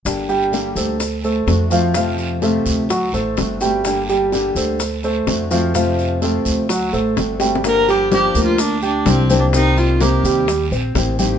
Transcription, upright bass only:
\new Staff \with { instrumentName = "Upright bass" } { \clef bass \time 4/4 \key g \minor \tempo 4 = 127 g,,4. d,4. f,4~ | f,4. d,4 a,,8 g,,4~ | g,,4. d,4. f,4~ | f,4. d,4 a,,8 g,,4~ |
g,,4. d,4. c,4~ | c,4. ees,4 bes,,8 a,,4 | }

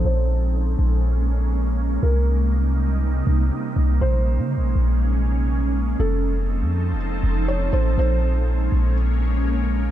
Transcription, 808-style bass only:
\new Staff \with { instrumentName = "808-style bass" } { \clef bass \time 4/4 \key bes \dorian \tempo 4 = 121 bes,,4. bes,,2~ bes,,8 | c,2~ c,8 c,8 r8 c,8 | bes,,8. des16. bes,,16. bes,,2~ bes,,8 | f,,4~ f,,16 f,8~ f,32 f,,8~ f,,32 f,,4 a,,8 |
bes,,4. bes,,2~ bes,,8 | }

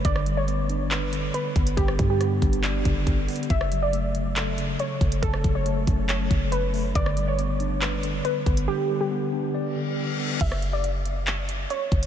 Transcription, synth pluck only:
\new Staff \with { instrumentName = "Synth pluck" } { \time 4/4 \key fis \phrygian \tempo 4 = 139 d''8. cis''2~ cis''16 b'4 | g'8. g'2.~ g'16 | e''8. d''2~ d''16 cis''4 | a'8. cis''2~ cis''16 b'4 |
d''8. cis''2~ cis''16 b'4 | g'8. g'2.~ g'16 | e''8. d''2~ d''16 cis''4 | }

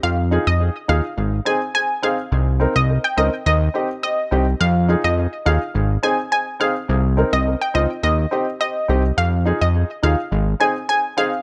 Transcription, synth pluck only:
\new Staff \with { instrumentName = "Synth pluck" } { \time 4/4 \key f \minor \tempo 4 = 105 f''16 r8 ees''16 r8 f''16 r8. aes''16 r16 aes''16 r16 f''16 r16 | r8. ees''16 r16 g''16 ees''16 r16 ees''8. r16 ees''8. r16 | f''16 r8 ees''16 r8 f''16 r8. aes''16 r16 aes''16 r16 f''16 r16 | r8. ees''16 r16 g''16 ees''16 r16 ees''8. r16 ees''8. r16 |
f''16 r8 ees''16 r8 f''16 r8. aes''16 r16 aes''16 r16 f''16 r16 | }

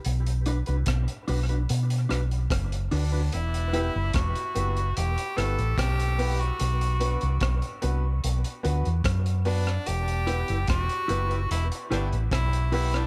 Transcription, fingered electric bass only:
\new Staff \with { instrumentName = "Fingered electric bass" } { \clef bass \time 4/4 \key e \minor \tempo 4 = 73 b,,8. c,16 b,,16 r16 b,,8 b,8 b,,8 fis,,8 d,8 | e,,8. fis,,16 e,,16 r16 fis,,8 e,,16 r16 g,,16 a,,16 b,,4 | b,,8. c,16 b,,16 r16 c,8 b,,16 r16 d,16 e,16 fis,4 | e,,8. fis,,16 e,,16 r16 fis,,8 e,,16 r16 g,,16 a,,16 b,,4 | }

